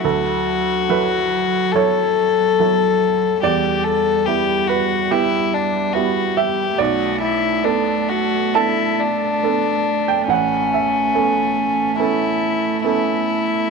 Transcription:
<<
  \new Staff \with { instrumentName = "Violin" } { \time 4/4 \key b \minor \tempo 4 = 70 fis'2 a'2 | g'8 a'8 g'8 fis'8 e'8 d'8 fis'8 g'8 | fis'8 e'8 d'8 fis'8 e'8 d'4. | cis'2 e'4 e'4 | }
  \new Staff \with { instrumentName = "Grand piano" } { \time 4/4 \key b \minor << { a'4 b'4 cis''2 | d''4. b'8 g'4. e''8 | d''2 a''4.~ a''16 g''16 | fis''8 e''2. r8 | } \\ { d,4 <fis e' a'>4 <fis e' a'>4 <fis e' a'>4 | e,4 <g b e'>4 <b e'>4 <g b e'>4 | b,,4 <b d' a'>4 <b d' a'>4 <b d' a'>4 | a,,4 <b cis' a'>4 <b cis' a'>4 <b cis' a'>4 | } >> }
  \new Staff \with { instrumentName = "Cello" } { \clef bass \time 4/4 \key b \minor fis1 | g1 | a1 | a1 | }
>>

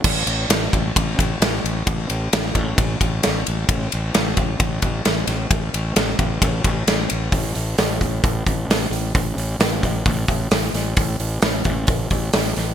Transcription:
<<
  \new Staff \with { instrumentName = "Fingered electric bass" } { \clef bass \time 4/4 \key c \major \tempo 4 = 132 a,,8 a,,8 a,,8 a,,8 a,,8 a,,8 a,,8 a,,8 | a,,8 a,,8 a,,8 a,,8 a,,8 a,,8 a,,8 a,,8 | a,,8 a,,8 a,,8 a,,8 a,,8 a,,8 a,,8 a,,8 | a,,8 a,,8 a,,8 a,,8 a,,8 a,,8 a,,8 a,,8 |
a,,8 a,,8 a,,8 a,,8 a,,8 a,,8 a,,8 a,,8 | a,,8 a,,8 a,,8 a,,8 a,,8 a,,8 a,,8 a,,8 | a,,8 a,,8 a,,8 a,,8 a,,8 a,,8 a,,8 a,,8 | }
  \new DrumStaff \with { instrumentName = "Drums" } \drummode { \time 4/4 <cymc bd>8 cymr8 <cymr sn>8 <bd cymr>8 <bd cymr>8 <bd cymr>8 <cymr sn>8 cymr8 | <bd cymr>8 cymr8 <cymr sn>8 <bd cymr>8 <bd cymr>8 <bd cymr>8 <cymr sn>8 cymr8 | <bd cymr>8 cymr8 <cymr sn>8 <bd cymr>8 <bd cymr>8 <bd cymr>8 <cymr sn>8 <cymr sn>8 | <bd cymr>8 cymr8 <cymr sn>8 <bd cymr>8 <bd cymr>8 <bd cymr>8 <cymr sn>8 cymr8 |
<hho bd>8 hho8 <hho sn>8 <hho bd>8 <hho bd>8 <hho bd>8 <hho sn>8 hho8 | <hho bd>8 hho8 <hho sn>8 <hho bd>8 <hho bd>8 <hho bd>8 <hho sn>8 <hho sn>8 | <hho bd>8 hho8 <hho sn>8 <hho bd>8 <hho bd>8 <hho bd>8 <hho sn>8 <hho sn>8 | }
>>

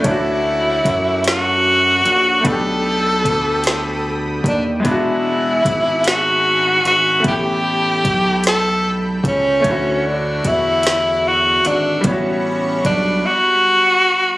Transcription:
<<
  \new Staff \with { instrumentName = "Analog synth pad" } { \time 6/8 \key d \major \tempo 4. = 50 << { <cis''' d'''>2. | <b'' dis'''>2. | b''2.~ | b''2. |
cis'''2. | <b'' cis'''>2. | } \\ { <fis' e''>2. | <a' g''>2. | <gis' e''>2. | <a' g''>2. |
<fis' e''>2. | <g fis''>2. | } >> }
  \new Staff \with { instrumentName = "Tenor saxophone" } { \time 6/8 \key d \major e'4. fis'4. | a'2 r8 d'8 | e'4. fis'4 fis'8 | g'4. a'8 r8 cis'8~ |
cis'8 d'8 e'4 fis'8 d'8 | cis'4 d'8 fis'4. | }
  \new Staff \with { instrumentName = "Grand piano" } { \time 6/8 \key d \major <a cis' d' e' fis'>2. | <a b d' g'>2. | <gis b d' e' fis'>2. | <a b e' g'>2. |
<d a e' fis' cis''>2. | <g b e' fis' cis''>2. | }
  \new Staff \with { instrumentName = "Analog synth bass" } { \clef bass \time 6/8 \key d \major d,4 fis,4. bes,,8 | b,,4 d,4. dis,8 | e,,4 gis,,4. gis,,8 | a,,4 b,,4. cis,8 |
d,4 e,4. gis,,8 | a,,4 b,,8 r4. | }
  \new DrumStaff \with { instrumentName = "Drums" } \drummode { \time 6/8 <hh bd>4 <hh bd>8 <hh sn>4 hh8 | <hh bd>4 <hh bd>8 <hh sn>4 <hh bd>8 | <hh bd>4 <hh bd>8 <hh sn>4 hh8 | <hh bd>4 <hh bd>8 <hh sn>4 <hh bd>8 |
<hh bd>4 <hh bd>8 <hh sn>4 hh8 | <hh bd>4 <hh bd>8 r4. | }
>>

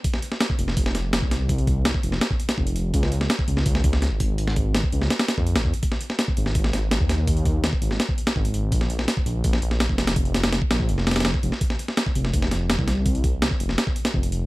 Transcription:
<<
  \new Staff \with { instrumentName = "Detuned saw bass" } { \clef bass \time 4/4 \key f \minor \tempo 4 = 166 r4. f,,8 f,,8 f,,8. c,8.~ | c,4~ c,16 r16 f,,8 r4 f,,4 | des,4 r8 des,8 des,8 des,8. aes,,8.~ | aes,,4~ aes,,16 r16 des,8 r8. f,8 aes,,16 f,16 r16 |
r4. aes,,8 aes,,8 aes,,8. ees,8.~ | ees,4~ ees,16 r16 aes,,8 r4 aes,,4 | bes,,4 r8 bes,,8 bes,,8 bes,,8. f,,8.~ | f,,4~ f,,16 r16 bes,,8 f,,4 f,,16 r16 f,,16 r16 |
r4. f,,8 f,,8 f,,8. c,8.~ | c,4~ c,16 r16 f,,8 r4 f,,4 | }
  \new DrumStaff \with { instrumentName = "Drums" } \drummode { \time 4/4 <hh bd>16 sn16 hh16 sn16 <hh sn>16 bd16 hh16 sn16 <hh bd>16 sn16 <hh sn>8 <hh sn>16 bd16 <hh sn>8 | <hh bd>16 hh16 <hh bd>8 <hh sn>16 bd16 hh16 sn16 <hh sn>16 bd16 hh16 <hh sn>16 bd16 hh16 hh8 | <hh bd>16 sn16 hh16 sn16 <hh sn>16 bd16 hh16 sn16 <hh bd>16 sn16 <hh bd>16 sn16 <hh sn>8 <hh bd>8 | hh16 sn16 <hh bd>8 <hh sn>16 bd16 hh16 sn16 <hh sn>16 <hh sn>16 <hh sn>16 bd16 hh16 <hh sn>16 bd16 hh16 |
<hh bd>16 sn16 hh16 sn16 <hh sn>16 bd16 hh16 sn16 <hh bd>16 sn16 <hh sn>8 <hh sn>16 bd16 <hh sn>8 | <hh bd>16 hh16 <hh bd>8 <hh sn>16 bd16 hh16 sn16 <hh sn>16 bd16 hh16 <hh sn>16 bd16 hh16 hh8 | <hh bd>16 sn16 hh16 sn16 <hh sn>16 bd16 hh8 <hh bd>16 sn16 hh16 sn16 <hh sn>16 bd16 <hh sn>16 <hh sn>16 | <hh bd>16 hh16 <hh sn>16 <hh sn>16 <hh sn>16 bd16 <hh sn>16 bd16 hh16 sn16 <hh sn>32 <hh sn>32 <hh sn>32 <hh sn>32 <hh sn>16 bd16 hh16 sn16 |
<hh bd>16 sn16 hh16 sn16 <hh sn>16 bd16 hh16 sn16 <hh bd>16 sn16 <hh sn>8 <hh sn>16 bd16 <hh sn>8 | <hh bd>16 hh16 <hh bd>8 <hh sn>16 bd16 hh16 sn16 <hh sn>16 bd16 hh16 <hh sn>16 bd16 hh16 hh8 | }
>>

